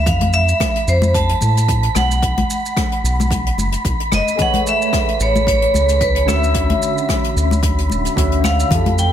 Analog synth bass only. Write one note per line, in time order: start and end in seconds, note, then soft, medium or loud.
0.06 0.53 F2 medium
0.87 1.34 F2 loud
1.42 1.89 A2 loud
1.95 2.42 B1 medium
3.03 3.51 B1 medium
3.58 3.76 F#1 medium
3.85 3.94 B1 medium
4.12 4.22 F#1 medium
5.20 5.67 A1 medium
5.74 6.29 C#2 medium
6.28 6.75 D2 loud
7.36 7.92 D2 medium
7.90 8.08 D1 medium
8.17 8.64 D2 loud
8.71 9.12 F2 loud